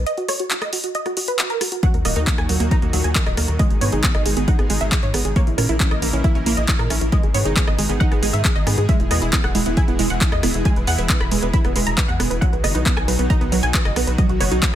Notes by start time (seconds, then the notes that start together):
0.06 D#5, closed hi-hat
0.17 F#4, closed hi-hat
0.28 C#5, cross-stick, open hi-hat
0.40 F#4, closed hi-hat
0.51 F#4, clap, closed hi-hat
0.62 D#5, cross-stick, closed hi-hat
0.73 F#4, open hi-hat
0.84 F#4, closed hi-hat
0.95 D#5, closed hi-hat
1.06 F#4, cross-stick, closed hi-hat
1.17 F#4, open hi-hat
1.28 B4, closed hi-hat
1.39 F#4, clap, closed hi-hat
1.50 A#4, closed hi-hat
1.61 F#4, cross-stick, open hi-hat
1.72 F#4, closed hi-hat
1.83 A#2 D#3 F#3 D#4 F#4 F#5, kick, closed hi-hat
1.94 D#2 A#4, closed hi-hat
2.05 D#1 A#3 D#5, cross-stick, open hi-hat
2.16 D#2 D#4 A#4, closed hi-hat
2.27 A#3, kick, clap, closed hi-hat
2.38 D#2 G#5, cross-stick, closed hi-hat
2.49 D#2 F#3 A#4, open hi-hat
2.60 D#2 A#3 A#4, closed hi-hat
2.71 D#4 A#5, kick, closed hi-hat
2.82 D#2 A#3 A#4, closed hi-hat
2.93 D#2 F#3 A#4, open hi-hat
3.04 D#2 G#5, closed hi-hat
3.15 A#4, kick, clap, closed hi-hat
3.26 D#1 D#5, cross-stick, closed hi-hat
3.37 D#2 A#3 A#4, cross-stick, open hi-hat
3.48 D#2 A#4, closed hi-hat
3.59 B2 G#3 D#4 G#4 D#5, kick, closed hi-hat
3.70 G#1 G#4, closed hi-hat
3.81 G#2 B3 C#5, open hi-hat
3.92 G#1 D#4 G#4, closed hi-hat
4.04 B3 G#4, kick, clap, closed hi-hat
4.15 G#1 D#5, cross-stick, closed hi-hat
4.26 G#1 G#3 G#4, open hi-hat
4.37 G#1 B3 G#4, closed hi-hat
4.48 D#4 F#5, kick, closed hi-hat
4.59 G#1 B3 G#4, cross-stick, closed hi-hat
4.70 G#1 G#3 G#4, open hi-hat
4.81 G#1 E5, closed hi-hat
4.92 G#4, kick, clap, closed hi-hat
5.03 G#2 C#5, closed hi-hat
5.14 G#1 B3 G#4, cross-stick, open hi-hat
5.25 G#1 G#4, closed hi-hat
5.36 C#3 E3 A#3 E4 A#4 C#5, kick, closed hi-hat
5.47 A#1 E4, closed hi-hat
5.58 A#2 C#4 A#4, cross-stick, open hi-hat
5.69 A#1 E4, closed hi-hat
5.80 C#4 E4, kick, clap, closed hi-hat
5.91 A#1 D#5, cross-stick, closed hi-hat
6.02 A#1 A#3 E4, open hi-hat
6.13 A#1 C#4 E4, closed hi-hat
6.24 E4 E5, kick, closed hi-hat
6.35 A#1 C#4 E4, closed hi-hat
6.46 A#1 A#3 E4, open hi-hat
6.57 A#1 D#5, closed hi-hat
6.68 E4, kick, clap, closed hi-hat
6.79 A#2 A#4, cross-stick, closed hi-hat
6.90 A#1 C#4 E4, cross-stick, open hi-hat
7.01 A#1 E4, closed hi-hat
7.12 B2 D#3 G#3 D#4 G#4 D#5, kick, closed hi-hat
7.23 G#1 G#4, closed hi-hat
7.34 G#2 B3 C#5, open hi-hat
7.45 G#1 D#4 G#4, closed hi-hat
7.56 B3 G#4, kick, clap, closed hi-hat
7.67 G#1 D#5, cross-stick, closed hi-hat
7.78 G#1 G#3 G#4, open hi-hat
7.89 G#1 B3 G#4, closed hi-hat
8.00 D#4 F#5, kick, closed hi-hat
8.11 G#1 B3 G#4, cross-stick, closed hi-hat
8.22 G#1 G#3 G#4, open hi-hat
8.33 G#2 E5, closed hi-hat
8.45 G#4, kick, clap, closed hi-hat
8.56 G#1 D#5, closed hi-hat
8.67 G#2 B3 G#4, cross-stick, open hi-hat
8.78 G#2 G#4, closed hi-hat
8.89 E3 G#3 E4 E5, kick, closed hi-hat
9.00 E1 E4, closed hi-hat
9.11 E2 B3 D#5, cross-stick, open hi-hat
9.22 E1 E4, closed hi-hat
9.33 B3 E4, kick, clap, closed hi-hat
9.44 E1 F#5, cross-stick, closed hi-hat
9.55 E1 G#3 E4, open hi-hat
9.66 E1 B3 E4, closed hi-hat
9.77 E4 G#5, kick, closed hi-hat
9.88 E1 B3 E4, closed hi-hat
9.99 E1 G#3 E4, open hi-hat
10.10 E1 F#5, closed hi-hat
10.21 E4, kick, clap, closed hi-hat
10.32 E2 D#5, cross-stick, closed hi-hat
10.43 E1 B3 E4, cross-stick, open hi-hat
10.54 E1 E4, closed hi-hat
10.65 G#3 G#5, kick, closed hi-hat
10.76 E1 B4, closed hi-hat
10.87 E2 B3 F#5, open hi-hat
10.98 E1 E4 B4, closed hi-hat
11.09 B3 B4, kick, clap, closed hi-hat
11.20 E1 B5, cross-stick, closed hi-hat
11.31 E1 G#3 B4, open hi-hat
11.42 E1 B3 B4, closed hi-hat
11.53 E4 B5, kick, closed hi-hat
11.65 E1 B3 B4, cross-stick, closed hi-hat
11.76 E1 G#3 B4, open hi-hat
11.87 E1 A#5, closed hi-hat
11.97 B4, kick, clap, closed hi-hat
12.08 E2 F#5, closed hi-hat
12.19 E1 B3 B4, cross-stick, open hi-hat
12.30 E1 B4, closed hi-hat
12.41 B2 D#3 F#3 D#4 F#4 F#5, kick, closed hi-hat
12.53 B1 B4, closed hi-hat
12.64 F#1 B3 D#5, cross-stick, open hi-hat
12.75 B1 D#4 B4, closed hi-hat
12.86 B3 B4, kick, clap, closed hi-hat
12.97 B1 G#5, cross-stick, closed hi-hat
13.08 B1 F#3 B4, open hi-hat
13.19 B1 B3 B4, closed hi-hat
13.30 D#4 A#5, kick, closed hi-hat
13.41 B1 B3 B4, closed hi-hat
13.52 B1 F#3 B4, open hi-hat
13.63 B1 G#5, closed hi-hat
13.74 B4, kick, clap, closed hi-hat
13.85 F#1 D#5, cross-stick, closed hi-hat
13.96 B1 B3 B4, cross-stick, open hi-hat
14.07 B1 B4, closed hi-hat
14.18 F#3 C#4 D#5, kick, closed hi-hat
14.29 B1 F#4, closed hi-hat
14.40 F#1 B3 C#5, cross-stick, open hi-hat
14.51 B1 D#4 F#4, closed hi-hat
14.62 B3 F#4, kick, clap, closed hi-hat